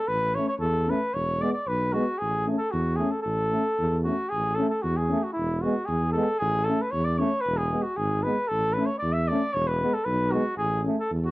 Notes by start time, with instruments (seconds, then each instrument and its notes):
0.08 tuba A1, flugelhorn B4
0.35 euphonium A3, french horn C#4, flugelhorn C#5
0.49 flugelhorn C#5
0.60 tuba E2, flugelhorn A4
0.87 euphonium A3, french horn C#4, flugelhorn B4
1.14 tuba E1, flugelhorn C#5
1.40 euphonium G#3, french horn B3, flugelhorn D5
1.53 flugelhorn D5
1.67 tuba B1, flugelhorn B4
1.93 euphonium G#3, french horn B3, flugelhorn F#4
2.18 tuba A1, flugelhorn G#4
2.46 euphonium A3, french horn C#4
2.58 flugelhorn A4
2.72 tuba E2, flugelhorn F#4
2.96 euphonium A3, flugelhorn G#4
3.02 french horn C#4
3.11 flugelhorn A4
3.23 tuba A1, flugelhorn A4
3.52 euphonium A3, french horn C#4
3.80 tuba E2
4.04 euphonium A3, french horn C#4, flugelhorn F#4
4.29 tuba A1, flugelhorn G#4
4.55 french horn C#4, flugelhorn A4
4.60 euphonium A3
4.69 flugelhorn A4
4.82 tuba E2, flugelhorn F#4
4.97 flugelhorn G#4
5.09 euphonium A3, french horn C#4
5.23 flugelhorn F#4
5.33 tuba E1, flugelhorn E4
5.62 euphonium G#3, french horn B3, flugelhorn F#4
5.86 tuba E2, flugelhorn G#4
6.12 euphonium G#3, flugelhorn A4
6.16 french horn B3
6.39 tuba A1, flugelhorn G#4
6.64 flugelhorn A4
6.69 euphonium A3, french horn C#4
6.82 flugelhorn B4
6.91 tuba E2, flugelhorn C#5
7.04 flugelhorn D5
7.18 euphonium A3, french horn C#4, flugelhorn C#5
7.41 flugelhorn B4
7.46 tuba E1
7.57 flugelhorn G#4
7.70 euphonium G#3, french horn B3
7.83 flugelhorn F#4
7.97 tuba G#1, flugelhorn G#4
8.23 euphonium G#3, french horn B3, flugelhorn B4
8.48 tuba A1, flugelhorn A4
8.73 flugelhorn B4
8.77 euphonium A3, french horn C#4
8.86 flugelhorn C#5
8.99 flugelhorn D5
9.03 tuba E2
9.13 flugelhorn E5
9.28 euphonium A3, flugelhorn D5
9.32 french horn C#4
9.53 tuba E1, flugelhorn C#5
9.67 flugelhorn B4
9.81 euphonium G#3, french horn B3
9.94 flugelhorn A4
10.05 tuba B1, flugelhorn B4
10.31 euphonium G#3, french horn B3, flugelhorn F#4
10.57 tuba A1, flugelhorn G#4
10.84 euphonium A3, french horn C#4
11.00 flugelhorn A4
11.11 tuba E2
11.25 flugelhorn F#4